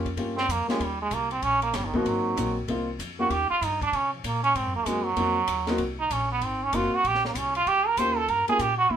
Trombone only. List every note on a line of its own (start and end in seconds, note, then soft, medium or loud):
0.37 0.53 C4 loud
0.51 0.69 A#3 medium
0.70 0.85 G#3 medium
0.83 1.01 G3 medium
1.02 1.15 G#3 medium
1.14 1.31 A#3 medium
1.32 1.45 C4 medium
1.43 1.62 C#4 loud
1.63 1.77 A#3 medium
1.75 1.87 G3 medium
1.86 1.98 D#3 medium
1.97 2.09 F3 medium
2.07 2.57 F#3 medium
3.20 3.33 F#4 medium
3.32 3.50 G4 medium
3.50 3.66 F4 loud
3.65 3.82 D#4 medium
3.83 3.96 D4 loud
3.95 4.13 C#4 medium
4.14 4.27 F3 soft
4.25 4.43 A#3 medium
4.43 4.57 C#4 loud
4.56 4.75 C4 medium
4.76 4.88 A#3 medium
4.86 5.06 G#3 medium
5.05 5.79 F#3 loud
6.00 6.14 D#4 medium
6.12 6.31 C#4 medium
6.32 6.46 B3 medium
6.45 6.65 C4 medium
6.64 6.77 C#4 medium
6.75 6.96 F4 medium
6.95 7.09 F#4 medium
7.07 7.26 G4 medium
7.26 7.39 A#3 medium
7.38 7.56 C#4 medium
7.56 7.70 F4 loud
7.68 7.89 G4 loud
7.87 8.00 A#4 loud
7.98 8.18 C5 loud
8.16 8.32 A4 loud
8.31 8.48 A#4 medium
8.49 8.63 G#4 loud
8.61 8.78 G4 medium
8.78 8.93 F#4 medium
8.92 8.97 E4 medium